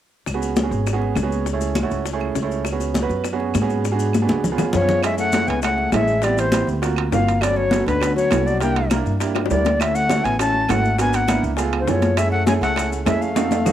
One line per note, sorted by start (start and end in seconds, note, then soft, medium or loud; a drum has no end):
0.26 0.69 C#2 medium
0.26 high bongo medium
0.26 high conga soft
0.26 claves medium
0.26 maracas medium
0.34 0.55 B3 medium
0.34 0.55 C#4 medium
0.34 0.55 F#4 medium
0.34 0.55 G#4 medium
0.42 high bongo soft
0.42 high conga soft
0.42 maracas medium
0.56 high bongo medium
0.56 high conga medium
0.56 maracas medium
0.63 0.85 B3 medium
0.63 0.85 C#4 medium
0.63 0.85 F#4 medium
0.63 0.85 G#4 medium
0.71 1.13 G#1 medium
0.71 high bongo soft
0.71 high conga soft
0.71 maracas soft
0.86 high bongo medium
0.86 high conga soft
0.86 claves medium
0.86 maracas medium
0.93 1.14 B3 medium
0.93 1.14 C#4 medium
0.93 1.14 F#4 medium
0.93 1.15 G#4 medium
1.01 high bongo soft
1.01 high conga soft
1.15 1.85 C#2 medium
1.15 high bongo soft
1.15 low bongo medium
1.15 high conga medium
1.15 claves medium
1.15 maracas medium
1.23 1.44 B3 medium
1.23 1.44 C#4 medium
1.23 1.44 F#4 medium
1.23 1.44 G#4 medium
1.31 high conga soft
1.31 maracas soft
1.46 high bongo medium
1.46 high conga soft
1.46 maracas medium
1.53 1.74 A3 medium
1.53 1.74 C#4 medium
1.53 1.74 E4 medium
1.53 1.74 G#4 medium
1.61 high bongo soft
1.61 high conga soft
1.61 maracas soft
1.75 high bongo medium
1.75 high conga medium
1.75 claves medium
1.75 maracas medium
1.83 2.04 A3 medium
1.83 2.04 C#4 medium
1.83 2.04 E4 medium
1.83 2.04 F#4 medium
1.90 2.33 C#2 medium
1.90 high conga soft
1.90 maracas soft
2.05 high bongo medium
2.05 high conga soft
2.05 maracas medium
2.13 2.34 A3 medium
2.13 2.34 C#4 medium
2.13 2.34 E4 medium
2.13 2.34 G#4 medium
2.20 high bongo soft
2.20 high conga soft
2.20 claves medium
2.35 3.05 C#2 medium
2.35 high bongo medium
2.35 low bongo medium
2.35 high conga soft
2.35 maracas medium
2.42 2.64 A3 medium
2.42 2.64 C#4 medium
2.42 2.64 E4 medium
2.42 2.64 G#4 medium
2.50 high bongo soft
2.50 maracas soft
2.65 high bongo medium
2.65 high conga soft
2.65 claves medium
2.65 maracas medium
2.72 2.93 B3 medium
2.72 2.93 C#4 medium
2.72 2.93 F#4 medium
2.72 2.93 G#4 medium
2.80 high bongo soft
2.80 high conga soft
2.80 maracas medium
2.94 high bongo soft
2.94 high conga medium
2.94 maracas medium
3.02 3.23 B3 medium
3.02 3.23 C#4 medium
3.02 3.23 F#4 medium
3.02 3.23 B4 medium
3.09 3.51 F#2 medium
3.09 high bongo soft
3.09 high conga soft
3.09 maracas soft
3.24 high bongo medium
3.24 high conga soft
3.24 claves medium
3.24 maracas medium
3.33 3.53 B3 medium
3.33 3.54 C#4 medium
3.33 3.53 F#4 medium
3.33 3.54 G#4 medium
3.40 high bongo soft
3.40 high conga soft
3.54 4.24 G#2 medium
3.54 high bongo medium
3.54 low bongo medium
3.54 high conga medium
3.54 claves medium
3.54 maracas medium
3.62 3.83 B3 medium
3.62 3.83 C#4 medium
3.62 3.83 F#4 medium
3.62 3.83 G#4 medium
3.69 high conga soft
3.69 maracas soft
3.85 high bongo medium
3.85 high conga soft
3.85 maracas medium
3.91 4.13 B3 medium
3.91 4.13 D4 medium
3.91 4.13 F#4 medium
3.91 4.13 G#4 medium
3.99 high bongo soft
3.99 high conga soft
3.99 maracas medium
4.13 high bongo medium
4.13 high conga medium
4.13 claves medium
4.13 maracas medium
4.22 4.43 B3 medium
4.22 4.43 D4 medium
4.22 4.43 F#4 medium
4.22 4.43 G#4 medium
4.29 4.57 C#2 medium
4.29 high conga medium
4.29 maracas soft
4.44 high bongo medium
4.44 low conga medium
4.44 maracas medium
4.52 4.72 B3 medium
4.52 4.73 C#4 medium
4.52 4.73 F4 medium
4.52 4.72 G#4 medium
4.58 4.73 F2 medium
4.58 high bongo medium
4.58 low conga medium
4.58 claves medium
4.58 maracas soft
4.73 5.43 F#2 medium
4.73 5.01 F3 medium
4.73 5.02 C#5 medium
4.73 low bongo medium
4.73 low conga medium
4.73 maracas medium
4.82 5.02 B3 medium
4.82 5.02 C#4 medium
4.82 5.02 F4 medium
4.82 5.02 G#4 medium
4.89 low bongo medium
4.89 low conga medium
4.89 maracas soft
5.03 5.17 G#3 medium
5.03 5.25 A3 medium
5.03 5.25 C#4 medium
5.03 5.25 E4 medium
5.03 5.25 G#4 medium
5.03 5.18 E5 medium
5.03 high bongo medium
5.03 high conga soft
5.03 high timbale loud
5.03 claves medium
5.03 maracas medium
5.18 5.49 A3 medium
5.18 5.49 F#5 loud
5.18 high bongo soft
5.18 high conga soft
5.18 maracas medium
5.32 5.54 A3 medium
5.32 5.55 C#4 medium
5.32 5.55 E4 medium
5.32 5.55 G#4 medium
5.32 high bongo medium
5.32 high conga loud
5.32 high timbale medium
5.32 low timbale medium
5.32 maracas medium
5.47 5.90 C#2 medium
5.47 5.61 B3 medium
5.47 5.62 G#5 medium
5.47 high bongo soft
5.47 high conga soft
5.47 high timbale medium
5.47 maracas soft
5.62 5.90 A3 medium
5.62 5.84 A3 medium
5.62 5.84 C#4 soft
5.62 5.84 E4 medium
5.62 5.84 G#4 medium
5.62 5.91 F#5 medium
5.62 high bongo medium
5.62 high conga soft
5.62 high timbale medium
5.62 claves medium
5.62 maracas medium
5.78 high bongo soft
5.78 high conga soft
5.92 6.61 A1 medium
5.92 6.25 G#3 medium
5.92 6.13 A3 medium
5.92 6.13 C#4 medium
5.92 6.14 E4 medium
5.92 6.14 G#4 medium
5.92 6.25 E5 medium
5.92 high bongo medium
5.92 low bongo medium
5.92 high conga medium
5.92 high timbale medium
5.92 low timbale medium
5.92 claves medium
5.92 maracas medium
6.08 high conga soft
6.08 maracas soft
6.22 6.39 G3 medium
6.22 6.43 B3 medium
6.22 6.43 C4 medium
6.22 6.43 E4 medium
6.22 6.43 G4 medium
6.22 6.41 D5 medium
6.22 high bongo medium
6.22 high conga soft
6.22 high timbale medium
6.22 maracas medium
6.37 6.67 E3 medium
6.37 6.68 C5 medium
6.37 high bongo soft
6.37 high conga soft
6.37 high timbale medium
6.37 maracas medium
6.51 6.73 B3 medium
6.51 6.73 C4 medium
6.51 6.73 E4 medium
6.51 6.73 G4 medium
6.51 high bongo medium
6.51 high conga medium
6.51 high timbale medium
6.51 low timbale soft
6.51 claves soft
6.51 maracas medium
6.67 7.09 D2 medium
6.67 high conga soft
6.67 maracas soft
6.82 7.03 A#3 medium
6.82 7.03 C4 medium
6.82 7.03 F4 medium
6.82 7.03 F#4 loud
6.82 high bongo medium
6.82 high conga soft
6.82 high timbale medium
6.82 maracas medium
6.96 high bongo soft
6.96 high conga soft
6.96 high timbale medium
6.96 claves medium
7.12 7.81 G1 medium
7.12 7.32 A#3 medium
7.12 7.44 A#3 medium
7.12 7.33 C4 medium
7.12 7.33 F4 medium
7.12 7.33 F#4 medium
7.12 7.43 F5 medium
7.12 high bongo medium
7.12 low bongo medium
7.12 high conga soft
7.12 low timbale medium
7.12 maracas medium
7.27 high bongo soft
7.27 high timbale medium
7.27 maracas soft
7.41 7.57 F#3 medium
7.41 7.62 A3 medium
7.41 7.62 B3 medium
7.41 7.62 C#4 medium
7.41 7.62 F#4 medium
7.41 7.58 D5 medium
7.41 high bongo medium
7.41 high conga soft
7.41 high timbale medium
7.41 claves medium
7.41 maracas medium
7.56 7.86 F#3 medium
7.56 7.86 C#5 medium
7.56 high bongo soft
7.56 high conga soft
7.70 7.92 A3 medium
7.70 7.92 B3 medium
7.70 7.92 C#4 medium
7.70 7.92 F#4 medium
7.70 high bongo medium
7.70 high conga medium
7.70 high timbale medium
7.70 low timbale medium
7.70 maracas medium
7.86 8.28 D2 medium
7.86 8.14 D3 medium
7.86 8.14 B4 medium
7.86 high bongo soft
7.86 high conga soft
7.86 high timbale medium
7.86 maracas soft
8.00 8.22 A3 medium
8.00 8.22 B3 medium
8.00 8.22 C#4 medium
8.00 8.22 F#4 medium
8.00 high bongo medium
8.00 high conga soft
8.00 high timbale medium
8.00 claves medium
8.00 maracas medium
8.16 8.47 F#3 medium
8.16 8.48 C#5 medium
8.16 high bongo soft
8.16 high conga soft
8.16 maracas soft
8.31 9.00 C2 loud
8.31 8.52 A3 medium
8.31 8.52 B3 medium
8.31 8.52 C#4 medium
8.31 8.52 F#4 medium
8.31 high bongo medium
8.31 low bongo medium
8.31 high conga medium
8.31 high timbale medium
8.31 low timbale medium
8.31 claves medium
8.31 maracas medium
8.46 8.61 F#3 medium
8.46 8.61 D5 medium
8.46 high conga soft
8.46 maracas soft
8.60 8.81 A#3 medium
8.60 8.90 A#3 medium
8.60 8.81 D4 medium
8.60 8.81 E4 medium
8.60 8.81 G4 medium
8.60 8.89 G5 medium
8.60 high bongo medium
8.60 high conga soft
8.60 high timbale medium
8.60 maracas medium
8.76 high bongo soft
8.76 high conga soft
8.76 high timbale medium
8.90 9.12 A#3 medium
8.90 9.12 D4 medium
8.90 9.11 E4 medium
8.90 9.12 A#4 medium
8.90 high bongo medium
8.90 high conga medium
8.90 high timbale medium
8.90 low timbale medium
8.90 claves medium
8.90 maracas medium
9.06 9.47 G2 medium
9.06 high conga soft
9.06 maracas soft
9.20 9.41 A#3 medium
9.20 9.41 D4 medium
9.20 9.41 E4 medium
9.20 9.41 G4 medium
9.20 high bongo medium
9.20 high conga soft
9.20 high timbale medium
9.20 maracas medium
9.35 high bongo loud
9.35 high conga soft
9.35 high timbale medium
9.35 claves medium
9.46 9.82 D5 medium
9.46 high bongo medium
9.50 10.19 D2 loud
9.50 9.82 G3 medium
9.50 9.71 A#3 medium
9.50 9.71 D4 medium
9.50 9.71 E4 medium
9.50 9.71 G4 medium
9.50 high conga soft
9.50 low timbale medium
9.50 maracas medium
9.65 low bongo medium
9.65 high conga medium
9.65 high timbale medium
9.65 maracas soft
9.80 9.95 A3 medium
9.80 10.01 A3 medium
9.80 10.01 C#4 medium
9.80 10.01 E4 medium
9.80 10.01 F#4 medium
9.80 9.97 E5 medium
9.80 high bongo medium
9.80 high conga soft
9.80 high timbale loud
9.80 claves medium
9.80 maracas medium
9.95 10.26 A3 medium
9.95 10.26 F#5 loud
9.95 high bongo soft
9.95 high conga soft
9.95 maracas medium
10.09 10.30 A3 medium
10.09 10.30 C#4 medium
10.09 10.30 E4 medium
10.09 10.30 F#4 medium
10.09 high bongo soft
10.09 high conga medium
10.09 high timbale medium
10.09 low timbale medium
10.09 maracas medium
10.24 10.66 A1 medium
10.24 10.39 B3 medium
10.24 10.39 G#5 medium
10.24 high bongo soft
10.24 high conga soft
10.24 high timbale medium
10.24 maracas soft
10.39 10.60 A3 medium
10.39 10.70 C#4 medium
10.39 10.60 C#4 soft
10.39 10.60 E4 medium
10.39 10.60 F#4 medium
10.39 10.72 A5 medium
10.39 high bongo medium
10.39 high conga soft
10.39 high timbale medium
10.39 claves medium
10.39 maracas medium
10.54 high bongo soft
10.54 high conga soft
10.69 11.38 G#1 medium
10.69 10.89 A3 medium
10.69 10.98 A3 medium
10.69 10.90 C#4 medium
10.69 10.89 E4 medium
10.69 10.90 F#4 medium
10.69 10.99 F#5 medium
10.69 high bongo medium
10.69 low bongo medium
10.69 high conga medium
10.69 high timbale medium
10.69 low timbale medium
10.69 claves medium
10.69 maracas medium
10.84 high conga soft
10.84 maracas soft
10.98 11.19 A#3 medium
10.98 11.19 B3 medium
10.98 11.16 B3 medium
10.98 11.20 D4 medium
10.98 11.19 F#4 medium
10.98 11.17 G#5 medium
10.98 high bongo medium
10.98 high conga soft
10.98 high timbale medium
10.98 maracas medium
11.13 11.44 B3 medium
11.13 11.44 F#5 medium
11.13 high bongo soft
11.13 high conga soft
11.13 high timbale medium
11.13 maracas medium
11.28 11.49 A#3 medium
11.28 11.49 B3 medium
11.28 11.49 D4 medium
11.28 11.49 E4 medium
11.28 high bongo soft
11.28 high conga medium
11.28 high timbale medium
11.28 low timbale soft
11.28 claves medium
11.28 maracas medium
11.43 11.84 C#2 medium
11.43 high conga soft
11.43 maracas soft
11.57 11.78 A3 medium
11.57 11.78 B3 medium
11.57 11.78 F4 medium
11.57 11.78 G#4 medium
11.57 high bongo medium
11.57 high conga soft
11.57 high timbale medium
11.57 maracas medium
11.72 high bongo soft
11.72 high conga soft
11.72 high timbale medium
11.72 claves medium
11.80 11.92 D3 soft
11.80 11.91 C5 medium
11.87 12.56 F#2 medium
11.87 12.21 F3 medium
11.87 12.08 A3 medium
11.87 12.08 B3 medium
11.87 12.08 F4 medium
11.87 12.08 G#4 medium
11.87 12.19 C#5 medium
11.87 high bongo medium
11.87 low bongo medium
11.87 high conga soft
11.87 low timbale medium
11.87 maracas medium
12.02 high bongo soft
12.02 high conga medium
12.02 high timbale medium
12.02 maracas soft
12.17 12.33 G#3 medium
12.17 12.38 A3 medium
12.17 12.38 C#4 medium
12.17 12.38 E4 medium
12.17 12.38 G#4 medium
12.17 12.31 E5 medium
12.17 high bongo medium
12.17 high conga soft
12.17 high timbale medium
12.17 claves medium
12.17 maracas medium
12.31 12.46 A3 medium
12.31 12.45 F#5 medium
12.31 high bongo soft
12.31 high conga soft
12.46 12.68 A3 medium
12.46 12.68 C#4 medium
12.46 12.55 C#4 medium
12.46 12.68 E4 medium
12.46 12.68 G#4 medium
12.46 12.53 G#5 medium
12.46 high bongo medium
12.46 high conga medium
12.46 high timbale medium
12.46 low timbale medium
12.46 maracas medium
12.61 13.03 C#2 medium
12.61 12.90 A3 medium
12.61 12.90 F#5 loud
12.61 high bongo soft
12.61 high conga soft
12.61 high timbale medium
12.61 maracas soft
12.76 12.98 A3 medium
12.76 12.98 C#4 medium
12.76 12.98 E4 medium
12.76 12.98 G#4 medium
12.76 high bongo medium
12.76 high conga soft
12.76 high timbale medium
12.76 claves medium
12.76 maracas medium
12.92 high bongo soft
12.92 high conga soft
12.92 maracas medium
13.05 13.72 F2 medium
13.05 13.22 G#3 medium
13.05 13.27 A3 medium
13.05 13.27 C#4 medium
13.05 13.27 E4 medium
13.05 13.27 G#4 medium
13.05 13.23 E5 medium
13.05 high bongo medium
13.05 low bongo medium
13.05 high conga medium
13.05 high timbale medium
13.05 low timbale medium
13.05 claves medium
13.05 maracas medium
13.20 13.72 A3 medium
13.20 13.72 F5 medium
13.20 high conga soft
13.20 maracas soft
13.35 13.56 A3 medium
13.35 13.57 C4 medium
13.35 13.57 D#4 medium
13.35 13.57 F#4 medium
13.35 high bongo medium
13.35 high conga medium
13.35 high timbale medium
13.35 maracas medium
13.51 high bongo soft
13.51 high conga medium
13.51 high timbale medium
13.51 maracas medium
13.65 13.72 A3 medium
13.65 13.72 C4 medium
13.65 13.72 D#4 medium
13.65 13.72 F#4 medium
13.65 high bongo medium
13.65 low conga medium
13.65 low timbale medium
13.65 claves medium
13.65 maracas medium